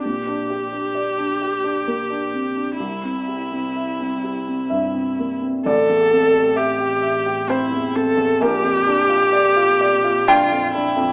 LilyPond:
<<
  \new Staff \with { instrumentName = "Viola" } { \time 3/4 \key a \phrygian \tempo 4 = 65 g'2. | e'2. | a'4 g'4 e'8 a'8 | g'2 f'8 e'8 | }
  \new Staff \with { instrumentName = "Grand piano" } { \time 3/4 \key a \phrygian << { r2. | r2 e''4 | d''2 c''4 | bes'2 g''4 | } \\ { bes,16 d'16 g'16 d'16 d''16 d'16 g'16 d'16 bes16 d'16 c'16 d'16 | c,16 c'16 g'16 c'16 e''16 c'16 g'16 c'16 g,16 c'16 bes16 c'16 | a,,16 e,16 c'16 g'16 e''16 g'16 e''16 g'16 c'16 e,16 c'16 e,16 | bes,,16 f,16 d'16 f'16 d''16 f'16 d''16 f'16 d'16 f,16 d'16 f,16 | } >> }
  \new Staff \with { instrumentName = "Double bass" } { \clef bass \time 3/4 \key a \phrygian bes,,2. | c,2. | a,,2. | bes,,2. | }
>>